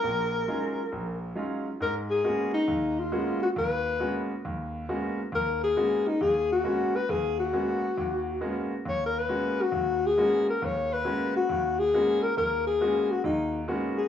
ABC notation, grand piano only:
X:1
M:4/4
L:1/8
Q:"Swing" 1/4=136
K:Ebdor
V:1 name="Grand piano"
[B,,,B,,]2 [G,A,DEF] z B,,,2 [G,A,DEF] z | [K:G#m] G,,2 [G,A,B,CF] z D,,2 [G,A,B,CF] z | D,,2 [G,A,B,CF] z D,,2 [G,A,B,CF] z | D,,2 [G,A,B,CF] z D,,2 [G,A,B,CF] z |
D,,2 [G,A,B,CF] z D,,2 [G,A,B,CF] z | D,,2 [G,A,B,CF] z D,,2 [G,A,B,CF] z | D,,2 [G,A,B,CF] z D,,2 [G,A,B,CF] z | D,,2 [G,A,B,CF] z D,,2 [G,A,B,CF] z |]